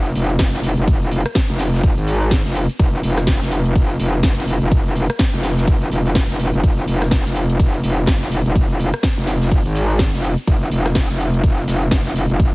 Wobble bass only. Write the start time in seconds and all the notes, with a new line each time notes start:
Already playing: F1
0.16 F1
0.39 F1
0.78 F1
1.50 F1
1.83 F1
1.97 G#1
2.45 F1
2.79 F1
3.03 F1
3.42 F1
3.76 F1
3.99 F1
4.24 F1
4.61 F1
5.34 F1
5.68 F1
5.91 F1
6.29 F1
6.54 F1
6.64 F1
6.88 F1
7.26 F1
7.60 F1
7.84 F1
8.07 F1
8.46 F1
9.18 F1
9.51 F1
9.66 G#1
10.14 F1
10.47 F1
10.72 F1
11.10 F1
11.44 F1
11.68 F1
11.92 F1
12.30 F1